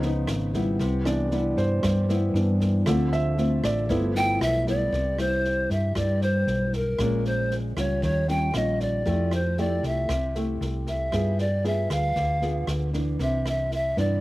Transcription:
Already playing: C#2 C#3 F3 B3 D#4
0.02 F3 B3 D#4, snare
0.27 G#1, cross-stick, snare
0.54 G3 B3 E4, kick, snare
0.79 C2 C3, kick, snare
1.05 E3 B3 D4 D5, cross-stick, snare
1.31 G3 B3 E4, snare
1.57 G2 C5, kick, snare
1.83 G2, kick, cross-stick, snare
2.09 G3 B3 E4, snare
2.34 G2 E3 B3 D4, snare
2.60 kick, snare
2.86 D2 D3 F3 A3 C4 F4, kick, cross-stick, snare
3.12 E5, snare
3.38 A3 C4 F4, snare
3.63 A1 D5, kick, cross-stick, snare
3.89 G1 G2 F3 A3 B3 E4, kick, snare
4.15 F3 B3 E4 G5, snare
4.41 B1 E5, cross-stick, snare
4.67 G3 B3 E4 D5, kick, snare
4.92 C2 C3, kick, snare
5.18 G3 E4 C5, cross-stick, snare
5.44 snare
5.70 G2 E5, kick, snare
5.95 G2 G3 E4 D5, kick, cross-stick, snare
6.21 C5, snare
6.47 B1, snare
6.73 A#4, kick, snare
6.99 A#1 A#2 G#3 C#4 F4, kick, cross-stick, snare
7.25 C5, snare
7.51 snare
7.76 C#2 G3 C#4 F4 C#5, kick, cross-stick, snare
8.02 D#2 D#3 C#5, kick, snare
8.28 G3 C#4 F4 G5, snare
8.54 A#1 G3 C#4 F4 D#5, cross-stick, snare
8.80 D5, kick, snare
9.06 F2 F3 A3 E4 G4, kick, snare
9.31 C5, cross-stick, snare
9.57 A3 E4 G4 D5, snare
9.83 C2 E5, kick, snare
10.09 C2 C3, kick, cross-stick, snare
10.35 A3 E4 G4, snare
10.61 C2, snare
10.87 E5, kick, snare
11.12 G2 G3 B3 F4 G#4, kick, cross-stick, snare
11.38 D5, snare
11.64 B3 F4 G#4 E5, snare
11.90 D2 F5, kick, cross-stick, snare
12.16 D2 D3, kick, snare
12.42 B3 F4 G#4, snare
12.67 D2, cross-stick, snare
12.93 E3 B3 D4, kick, snare
13.19 C2 C3 E5, kick, snare
13.46 E5, cross-stick, snare
13.71 E5, snare
13.97 G2 E3 B3 D4 D5, kick, snare

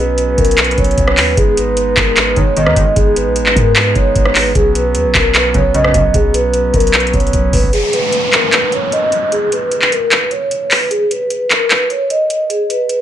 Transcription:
Already playing: B1 F#3 B3 C#4
0.00 B4
0.18 closed hi-hat
0.38 B1 A#4, kick, closed hi-hat
0.45 closed hi-hat
0.51 closed hi-hat
0.58 clap, closed hi-hat
0.64 closed hi-hat
0.71 closed hi-hat
0.78 B1 C#5, kick, closed hi-hat
0.84 closed hi-hat
0.91 closed hi-hat
0.98 B1, kick, closed hi-hat
1.08 cross-stick
1.17 D#2 B4, clap, open hi-hat
1.37 G#1 G#3 B3 D#4 G#4, kick, closed hi-hat
1.57 B4, closed hi-hat
1.77 closed hi-hat
1.97 G#1, kick, clap, closed hi-hat
2.17 B4, clap, closed hi-hat
2.36 G#1 G#2 B2 D#3 C#5, kick, closed hi-hat
2.57 G#2 B2 D#3 D#5, closed hi-hat
2.66 D#2, cross-stick
2.76 G#1, kick, closed hi-hat
2.96 G#1 G#4, kick, closed hi-hat
3.16 B4, closed hi-hat
3.26 A#1
3.36 closed hi-hat
3.41 G#1
3.46 clap
3.56 G#2 A#4, kick, closed hi-hat
3.76 clap, closed hi-hat
3.95 G#1 C#5, kick, closed hi-hat
4.16 G#1, kick, closed hi-hat
4.25 cross-stick
4.35 B4, clap, open hi-hat
4.55 B1 F#3 B3 C#4 G#4, kick, closed hi-hat
4.75 B4, closed hi-hat
4.95 D#2, closed hi-hat
5.05 B1
5.15 B1, kick, clap, closed hi-hat
5.34 B4, clap, closed hi-hat
5.54 B1 F#2 C#3 C#5, kick, closed hi-hat
5.74 F#2 C#3 D#5, closed hi-hat
5.84 cross-stick
5.94 B1, kick, closed hi-hat
6.14 B1 G#4, kick, closed hi-hat
6.34 B4, closed hi-hat
6.54 closed hi-hat
6.74 B1 A#4, kick, closed hi-hat
6.80 closed hi-hat
6.87 closed hi-hat
6.94 B4, clap, closed hi-hat
7.00 closed hi-hat
7.07 closed hi-hat
7.13 B1 C#5, kick, closed hi-hat
7.20 closed hi-hat
7.27 closed hi-hat
7.33 B1, kick, closed hi-hat
7.53 B1 B4, kick, open hi-hat
7.63 kick
7.73 G#4, closed hi-hat, downlifter
7.93 B4, closed hi-hat
8.12 closed hi-hat
8.33 A#4, clap, closed hi-hat
8.52 B4, clap, closed hi-hat
8.72 C#5, closed hi-hat
8.92 D#5, closed hi-hat
9.12 closed hi-hat
9.32 G#4, closed hi-hat
9.52 B4, closed hi-hat
9.71 closed hi-hat
9.82 clap
9.92 A#4, closed hi-hat
10.11 B4, clap, closed hi-hat
10.31 C#5, closed hi-hat
10.51 closed hi-hat
10.71 B4, clap, open hi-hat
10.91 G#4, closed hi-hat
11.11 B4, closed hi-hat
11.30 closed hi-hat
11.51 clap, closed hi-hat
11.70 clap, closed hi-hat
11.90 C#5, closed hi-hat
12.10 D#5, closed hi-hat
12.30 closed hi-hat
12.50 G#4, closed hi-hat
12.70 B4, closed hi-hat
12.89 closed hi-hat

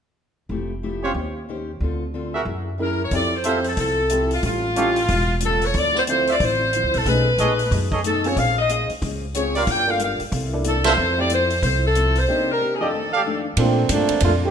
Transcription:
0.49 F1 F3 A3 E4 G4
0.83 F3 A3 E4 G4
1.03 C4 C#4 F4 G4 C5 C#5
1.14 D#2 D#3 C#4 G4 C5
1.49 D#3 C#4 G4 C5
1.80 D2 D3 C4 F4 A4
2.14 D3 C4 F4 A4
2.34 F#4 G#4 A#4 E5
2.45 F#2 F#3 A#3 E4 G#4
2.78 F#3 A#3 C#4 E4 G#4 A#4
3.03 C#5
3.11 F2 F3 C4 E4 G4 A4 D5, kick, open hi-hat
3.35 C5
3.44 F3 C4 E4 F4 G4 A4 C5 E5, closed hi-hat
3.64 A4, open hi-hat
3.77 C2 F3 C4 E4 A4, kick, open hi-hat
3.81 A4
4.09 F3 C4 E4 G4 A4, closed hi-hat
4.31 F4, open hi-hat
4.43 A1 A2 G3 C#4 F4, kick, open hi-hat
4.76 A2 G3 C#4 E4 F4 G4 A4 C#5 F5, closed hi-hat
4.96 open hi-hat
5.08 E1 A2 G3 C#4 F4, kick, open hi-hat
5.40 A2 G3 C#4 F4 A4, closed hi-hat
5.61 C#5, open hi-hat
5.73 D2 D3 F3 C4 E4 D5, kick, open hi-hat
5.95 C5, snare
6.06 D3 F3 C4 E4 F4 A4, closed hi-hat
6.10 C5
6.27 F4 C5 D5 E5, open hi-hat
6.40 A1 D3 F3 C4 E4 C5, kick, open hi-hat
6.73 D3 F3 C4 E4, closed hi-hat
6.84 D2
6.94 C2 A4, open hi-hat
7.05 B1 B2 A3 C#4 D#4 G#4 B4, kick, open hi-hat
7.38 A#1 B2 A3 D#4 G#4 A4 C#5 D#5, closed hi-hat
7.59 open hi-hat
7.71 F#2 B2 A3 D#4 G#4, kick, open hi-hat
7.92 G#4 A4 C#5 D#5, kick
8.04 B2 A3 D#4 G#4 A4, closed hi-hat
8.24 C4 C#4 F4 G#4 C#5, open hi-hat
8.36 A#1 A#3 C#4 G#4 C5 F5, kick, open hi-hat
8.59 D#5
8.69 A#3 C#4 G#4 C5 D#5, closed hi-hat
8.90 muted upright bass stroke, open hi-hat
9.02 C#2 A#3 C#4 G#4 C5, kick, open hi-hat
9.35 A#3 C4 C#4 F4 G#4 C5 C#5, closed hi-hat
9.55 F4 G4 A#4 D5 F5, open hi-hat
9.66 G1 G3 D4 F4 A#4 G5, kick, open hi-hat
9.87 A#3 D4 F4 A4 F5
9.99 G3 D4 F4 A#4 F5, closed hi-hat
10.20 muted upright bass stroke, open hi-hat
10.32 C2 C3 A#3 E4 A4, kick, open hi-hat
10.53 A#3 D4 E4 A4
10.64 C3 A#3 E4 A4, closed hi-hat
10.84 F4 A4 C5 E5, snare, ride
10.97 F2 F3 C4 E4 A4
11.18 A3 C4 E4 G4 D5
11.30 F3 C4 E4 A4 C5, closed hi-hat
11.50 open hi-hat
11.62 C2 F3 C4 E4 A4 C5, kick, open hi-hat
11.86 A4
11.95 F3 C4 E4 A4, closed hi-hat
12.15 C5, open hi-hat
12.28 C3 A#3 D4 D#4 G4
12.51 A#4
12.60 C3 A#3 D#4 G4
12.75 G#4
12.81 F2 A3 D4 D#4 F4 G4 A4 D5 D#5
12.85 A4
12.92 F2 D#3 A3 D4
13.13 G4 A4 D5 F5
13.24 F2 D#3 A3 D4
13.57 A#2 F3 A3 A#3 C4 D4 F4 A4, kick, ride
13.61 D4
13.89 G2 A#2 F3 A3 A#3 D4, kick, hi-hat pedal, ride
14.09 muted upright bass stroke, ride
14.20 F2 A#2 A3 A#3 D4 F4, kick, ride
14.24 F3 A3 D4
14.44 D#3 A3 C4 G4

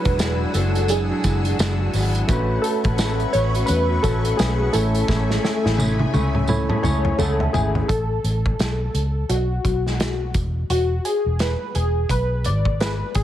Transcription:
Already playing: F#3 D4 E4 G#4 B4 F#5 G#5 E6
0.05 E1 G#3 D4 F#4, kick, closed hi-hat
0.18 E3 G#3 D4 F#4, snare, closed hi-hat, tambourine
0.54 F#1 E3 G#3 D4 F#4 A4, closed hi-hat, tambourine
0.75 G#3 D4 F#4, closed hi-hat
0.88 F#3 D4 E4 G#4, closed hi-hat, tambourine
1.10 G#3 D4 F#4
1.24 F#1 E3 G#3 D4 F#4, kick, closed hi-hat, tambourine
1.45 G#3 D4 F#4, closed hi-hat
1.59 F#1 E3 G#3 D4 F#4, snare, closed hi-hat, tambourine
1.80 G#3 D4 F#4
1.93 G#1 E3 G#3 D4 F#4, open hi-hat, tambourine
2.15 closed hi-hat
2.28 A1 A3 C#4 F#4 B4 E5 C#6, kick, closed hi-hat, tambourine
2.62 A4, closed hi-hat
2.84 A1 C#4 F#4 B4, kick, closed hi-hat
2.98 A3 C#4 F#4 B4, snare, closed hi-hat, tambourine
3.20 closed hi-hat
3.33 A1 A3 C#4 F#4 B4 C#5, closed hi-hat, tambourine
3.54 C#4 F#4 B4, closed hi-hat
3.66 E2 A3 C#4 F#4 B4, closed hi-hat, tambourine
3.70 B4
3.89 C#4 F#4 B4
4.03 A1 A3 C#4 F#4 A4 B4, kick, closed hi-hat, tambourine
4.24 C#4 F#4 B4, closed hi-hat
4.37 B1 A3 C#4 F#4 G#4 B4, snare, closed hi-hat, tambourine
4.60 C#4 F#4 B4
4.73 A1 A3 C#4 E4 A4 C#5 E5 G#5, closed hi-hat, tambourine
4.95 closed hi-hat
5.08 A1 A3 C#4 E4, kick, snare, tambourine
5.30 snare
5.45 snare, tambourine
5.63 A1 C#4 E4 G#4, snare
5.77 A3 C#4 E4 G#4, high tom, tambourine
5.99 high tom
6.13 C#2 A3 C#4 E4 G#4 C#6, high tom, tambourine
6.35 mid tom
6.48 A3 E4 A4 C#5 B5, mid tom, tambourine
6.69 C#4 E4 G#4 A5, mid tom
6.83 C#2 A3 C#4 E4 G#4 C#5 G#5, mid tom, tambourine
7.05 mid tom
7.18 C#2 A3 C#4 E4 G#4 A4 F#5, mid tom, tambourine
7.40 C#4 E4 G#4 E5, floor tom
7.53 G#1 A3 C#4 E4 G#4 E5, floor tom, tambourine
7.75 floor tom
7.88 A1 A4, kick, closed hi-hat
8.24 A1, closed hi-hat
8.46 kick
8.59 B1, snare, closed hi-hat
8.94 C#2, closed hi-hat
9.29 B1 F#4, closed hi-hat
9.65 B1, kick, closed hi-hat
9.87 snare
10.00 snare, closed hi-hat
10.34 E1, kick, closed hi-hat
10.70 E1 F#4, closed hi-hat
11.05 G#4, closed hi-hat
11.26 E1
11.39 B4, snare, closed hi-hat
11.75 E1 G#4, closed hi-hat
12.09 B1 B4, kick, closed hi-hat
12.44 G#1 D5, closed hi-hat
12.65 kick
12.80 B4, snare, closed hi-hat
13.15 G#1 G#4, kick, closed hi-hat

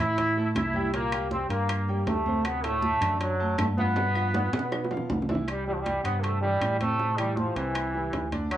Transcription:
0.00 A2 E3 E4 E5
0.18 high bongo, high conga, low conga, high timbale
0.37 A3 A4 A5, high bongo, high conga
0.55 C2 E4, high bongo, low bongo, high conga, high timbale, low timbale, claves
0.74 G3 G4 G5, high conga
0.93 A#2 A#3 A#4, high bongo, high conga, high timbale
1.12 G3 G4 G5, high bongo, high conga, high timbale, claves
1.31 C4, high bongo, high conga
1.49 G2 A#3 A#4 A#5, high bongo, high conga, high timbale
1.69 high bongo, high conga, high timbale, claves
1.88 G3 G4 G5, high conga
2.07 D2 A3, high bongo, low bongo, high conga, high timbale, low timbale
2.26 C3 C4 C5, high bongo, high conga
2.45 B3, high bongo, high conga, high timbale, claves
2.64 A2 A3 A4, high bongo, high conga, high timbale
2.82 high bongo, high conga
3.01 F#2 D3 D4 D5, high bongo, high conga, low conga, high timbale, claves
3.21 F#3, high bongo, high conga, high timbale
3.39 A3 A4 A5, high bongo, high conga
3.58 G2 A3, high bongo, low bongo, high conga, high timbale, low timbale, claves
3.78 F3 B3 F4 F5, high conga
3.96 B2 B3 B4, high bongo, high conga, high timbale
4.15 F3 F4 F5, high bongo, high conga, claves
4.34 high bongo, high conga, low timbale
4.53 B2 B3 B4 B5, high conga, high timbale
4.59 low bongo
4.72 high bongo, high conga, low timbale, claves
4.84 high bongo
4.91 F3 F4 F5, high conga, low timbale
4.97 low bongo
5.10 C2, low bongo, high conga, low timbale
5.22 low bongo
5.29 E3 E4 E5, high conga, low timbale
5.35 low bongo
5.48 G3, high bongo, high conga, high timbale, claves
5.67 E3 G3 E4 G4, high conga
5.74 F3
5.81 G3
5.86 high bongo, high conga, high timbale
6.04 G2 C3 B3 C4 C5, high timbale, claves
6.23 A3, high bongo, high conga, high timbale
6.42 E3 G3 E4 G4, high conga
6.61 A2, high bongo, low bongo, high conga, high timbale, claves
6.80 C3 A3 C4 C5, high conga, high timbale
6.99 C3 C4 C5, high bongo, high conga
7.18 E3 G3 E4 G4, high bongo, high conga, high timbale, claves
7.37 F3, high bongo, high conga
7.56 C2 C3 E3 C4 C5, high bongo, high conga, high timbale
7.75 high bongo, high conga, high timbale, claves
7.94 E3 E4 G4, high bongo, high conga
8.13 D2, high bongo, low bongo, high conga, high timbale, low timbale
8.32 D3 D4 D5, high conga, high timbale
8.51 F#3, high bongo, high timbale, claves

